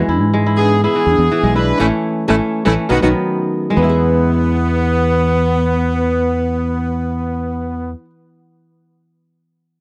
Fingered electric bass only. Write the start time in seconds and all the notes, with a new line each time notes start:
0.08 E2
0.21 G#2
1.07 E2
1.18 E2
1.43 B1
1.81 A1
2.30 A1
2.67 A1
2.91 B1
3.03 B1
3.77 E2